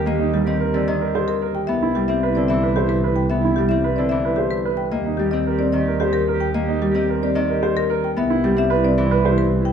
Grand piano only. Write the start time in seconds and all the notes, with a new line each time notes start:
Already playing: G4
0.20 D#4
0.33 G4
0.60 A#4
0.74 C4
1.01 A#4
1.15 C5
1.42 A#4
1.55 G4
1.82 E4
1.96 G4
2.23 B4
2.37 C4
2.63 B4
2.77 C5
3.04 B4
3.44 E4
3.57 G4
3.84 B4
3.98 C4
4.25 B4
4.38 C5
4.65 B4
5.06 D#4
5.20 G4
5.47 A#4
5.60 C4
5.88 A#4
6.01 C5
6.28 A#4
6.68 D#4
6.82 G4
7.09 A#4
7.23 C4
7.50 A#4
7.63 C5
7.90 A#4
8.30 E4
8.43 G4
8.70 B4
8.84 C4
9.11 B4
9.25 C5